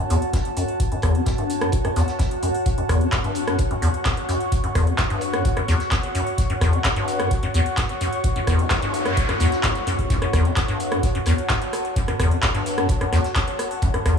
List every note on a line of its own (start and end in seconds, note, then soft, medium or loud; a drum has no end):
0.00 14.19 F#4 medium
0.00 14.19 C#5 medium
0.00 14.19 F#5 medium
0.00 3.57 A5 medium
0.10 0.17 E2 loud
0.10 closed hi-hat medium
0.10 open hi-hat loud
0.22 closed hi-hat soft
0.33 0.37 F#2 medium
0.33 kick loud
0.33 snare loud
0.33 closed hi-hat medium
0.45 closed hi-hat soft
0.57 0.63 F#2 medium
0.57 closed hi-hat medium
0.57 open hi-hat loud
0.68 closed hi-hat soft
0.80 kick loud
0.80 closed hi-hat medium
0.92 0.96 F#2 medium
0.92 closed hi-hat soft
1.02 1.17 E2 medium
1.02 kick medium
1.02 cross-stick medium
1.02 closed hi-hat medium
1.02 open hi-hat loud
1.15 1.21 F#2 medium
1.15 closed hi-hat soft
1.26 1.30 F#2 medium
1.26 kick loud
1.26 snare loud
1.26 closed hi-hat medium
1.38 1.63 G2 medium
1.38 closed hi-hat soft
1.50 closed hi-hat medium
1.50 open hi-hat loud
1.61 1.71 F#2 medium
1.61 cross-stick medium
1.61 closed hi-hat soft
1.72 kick loud
1.72 closed hi-hat medium
1.85 1.89 F#2 medium
1.85 cross-stick medium
1.85 closed hi-hat soft
1.96 2.03 E2 loud
1.96 snare soft
1.96 closed hi-hat medium
1.96 open hi-hat loud
2.08 snare soft
2.08 closed hi-hat soft
2.19 2.23 F#2 medium
2.19 kick loud
2.19 snare loud
2.19 closed hi-hat medium
2.31 closed hi-hat soft
2.42 2.49 F#2 medium
2.42 closed hi-hat medium
2.42 open hi-hat loud
2.54 open hi-hat medium
2.66 kick loud
2.66 closed hi-hat medium
2.78 2.82 F#2 medium
2.78 closed hi-hat soft
2.89 3.02 E2 medium
2.89 kick medium
2.89 cross-stick medium
2.89 closed hi-hat medium
2.89 open hi-hat loud
3.01 3.07 F#2 medium
3.01 closed hi-hat soft
3.12 3.16 F#2 medium
3.12 kick loud
3.12 snare loud
3.12 clap loud
3.12 closed hi-hat medium
3.24 3.49 G2 medium
3.24 closed hi-hat soft
3.35 closed hi-hat medium
3.35 open hi-hat loud
3.47 3.57 F#2 loud
3.47 cross-stick medium
3.47 closed hi-hat soft
3.54 11.01 C#6 medium
3.58 kick loud
3.58 closed hi-hat medium
3.71 3.75 F#2 medium
3.71 closed hi-hat soft
3.82 3.89 E2 loud
3.82 closed hi-hat medium
3.82 open hi-hat loud
3.94 closed hi-hat soft
4.05 4.09 F#2 medium
4.05 kick loud
4.05 snare loud
4.05 clap loud
4.05 closed hi-hat medium
4.17 closed hi-hat soft
4.29 4.35 F#2 medium
4.29 closed hi-hat medium
4.29 open hi-hat loud
4.41 closed hi-hat soft
4.52 kick loud
4.52 closed hi-hat medium
4.64 4.68 F#2 medium
4.64 closed hi-hat soft
4.75 4.89 E2 medium
4.75 kick medium
4.75 cross-stick medium
4.75 closed hi-hat medium
4.75 open hi-hat medium
4.87 4.93 F#2 medium
4.87 closed hi-hat soft
4.98 5.02 F#2 medium
4.98 kick loud
4.98 snare loud
4.98 clap loud
4.98 closed hi-hat medium
5.10 5.35 G2 medium
5.10 closed hi-hat soft
5.21 closed hi-hat medium
5.21 open hi-hat medium
5.33 5.43 F#2 medium
5.33 cross-stick medium
5.33 closed hi-hat soft
5.45 kick loud
5.45 closed hi-hat medium
5.57 5.61 F#2 medium
5.57 cross-stick medium
5.57 closed hi-hat soft
5.68 5.75 E2 loud
5.68 snare soft
5.68 closed hi-hat medium
5.68 open hi-hat medium
5.80 snare soft
5.80 closed hi-hat soft
5.91 5.96 F#2 medium
5.91 kick loud
5.91 snare loud
5.91 clap loud
5.91 closed hi-hat medium
6.03 closed hi-hat soft
6.15 6.21 F#2 medium
6.15 closed hi-hat medium
6.15 open hi-hat loud
6.27 open hi-hat medium
6.38 kick loud
6.38 closed hi-hat medium
6.50 6.54 F#2 medium
6.50 closed hi-hat soft
6.61 6.75 E2 loud
6.61 kick medium
6.61 cross-stick medium
6.61 closed hi-hat medium
6.61 open hi-hat medium
6.73 6.79 F#2 medium
6.73 closed hi-hat soft
6.84 6.89 F#2 medium
6.84 kick loud
6.84 snare loud
6.84 clap loud
6.84 closed hi-hat medium
6.96 7.21 G2 medium
6.96 closed hi-hat soft
7.08 closed hi-hat medium
7.08 open hi-hat medium
7.20 7.29 F#2 medium
7.20 cross-stick medium
7.20 closed hi-hat soft
7.31 kick loud
7.31 closed hi-hat medium
7.43 7.47 F#2 medium
7.43 closed hi-hat soft
7.54 7.61 E2 loud
7.54 closed hi-hat medium
7.54 open hi-hat loud
7.66 closed hi-hat soft
7.77 7.82 F#2 medium
7.77 kick loud
7.77 snare loud
7.77 clap loud
7.77 closed hi-hat medium
7.89 closed hi-hat soft
8.01 8.07 F#2 medium
8.01 closed hi-hat medium
8.01 open hi-hat medium
8.13 closed hi-hat soft
8.24 kick loud
8.24 closed hi-hat medium
8.24 noise sweep medium
8.36 8.40 F#2 medium
8.36 closed hi-hat soft
8.47 8.61 E2 loud
8.47 kick medium
8.47 cross-stick medium
8.47 closed hi-hat medium
8.47 open hi-hat loud
8.59 8.66 F#2 medium
8.59 closed hi-hat soft
8.71 8.75 F#2 medium
8.71 kick loud
8.71 snare loud
8.71 clap loud
8.71 closed hi-hat medium
8.82 9.07 G2 medium
8.82 closed hi-hat soft
8.94 closed hi-hat medium
8.94 open hi-hat loud
9.06 9.15 F#2 medium
9.06 cross-stick medium
9.06 closed hi-hat soft
9.17 kick loud
9.17 closed hi-hat medium
9.17 closed hi-hat loud
9.29 9.33 F#2 medium
9.29 cross-stick medium
9.29 closed hi-hat soft
9.40 9.47 E2 loud
9.40 snare soft
9.40 closed hi-hat medium
9.40 open hi-hat loud
9.52 snare soft
9.52 closed hi-hat soft
9.64 9.68 F#2 medium
9.64 kick loud
9.64 snare loud
9.64 clap loud
9.64 closed hi-hat medium
9.75 closed hi-hat soft
9.87 9.93 F#2 medium
9.87 closed hi-hat medium
9.87 open hi-hat loud
9.99 kick medium
9.99 open hi-hat medium
10.10 10.17 F#2 medium
10.10 kick loud
10.10 closed hi-hat medium
10.22 10.26 F#2 medium
10.22 cross-stick medium
10.22 closed hi-hat soft
10.33 10.47 E2 loud
10.33 kick medium
10.33 cross-stick medium
10.33 closed hi-hat medium
10.33 open hi-hat loud
10.45 10.51 F#2 medium
10.45 closed hi-hat soft
10.57 10.61 F#2 medium
10.57 kick loud
10.57 cross-stick soft
10.57 snare loud
10.57 clap loud
10.57 closed hi-hat medium
10.68 10.93 G2 medium
10.68 closed hi-hat soft
10.80 closed hi-hat medium
10.80 open hi-hat loud
10.92 11.01 F#2 loud
10.92 cross-stick medium
10.92 closed hi-hat soft
10.99 14.19 A5 medium
11.03 kick loud
11.03 closed hi-hat medium
11.15 11.19 F#2 medium
11.15 closed hi-hat soft
11.26 11.33 E2 loud
11.26 cross-stick soft
11.26 closed hi-hat medium
11.26 open hi-hat loud
11.38 closed hi-hat soft
11.50 11.54 F#2 medium
11.50 kick loud
11.50 snare loud
11.50 clap loud
11.50 closed hi-hat medium
11.62 closed hi-hat soft
11.73 cross-stick medium
11.73 closed hi-hat medium
11.73 open hi-hat loud
11.85 closed hi-hat soft
11.96 12.03 F#2 medium
11.96 kick loud
11.96 closed hi-hat medium
12.08 12.12 F#2 medium
12.08 cross-stick medium
12.08 closed hi-hat soft
12.19 12.33 E2 loud
12.19 kick medium
12.19 cross-stick medium
12.19 closed hi-hat medium
12.19 open hi-hat loud
12.31 12.38 F#2 medium
12.31 closed hi-hat soft
12.43 12.47 F#2 medium
12.43 kick loud
12.43 cross-stick soft
12.43 snare loud
12.43 clap loud
12.43 closed hi-hat loud
12.43 closed hi-hat medium
12.55 12.79 G2 medium
12.55 closed hi-hat soft
12.66 closed hi-hat medium
12.66 open hi-hat loud
12.78 12.87 F#2 loud
12.78 cross-stick medium
12.78 closed hi-hat soft
12.89 kick loud
12.89 closed hi-hat medium
13.01 13.05 F#2 medium
13.01 cross-stick medium
13.01 closed hi-hat soft
13.13 13.19 E2 loud
13.13 cross-stick soft
13.13 snare soft
13.13 closed hi-hat medium
13.13 open hi-hat loud
13.24 snare soft
13.24 closed hi-hat soft
13.36 13.40 F#2 medium
13.36 kick loud
13.36 snare loud
13.36 clap loud
13.36 closed hi-hat medium
13.48 closed hi-hat soft
13.59 cross-stick medium
13.59 closed hi-hat medium
13.59 open hi-hat loud
13.71 open hi-hat medium
13.82 13.89 F#2 medium
13.82 kick loud
13.82 closed hi-hat medium
13.94 13.98 F#2 medium
13.94 cross-stick medium
13.94 closed hi-hat soft
14.06 14.19 E2 loud
14.06 kick medium
14.06 cross-stick medium
14.06 closed hi-hat medium
14.06 open hi-hat loud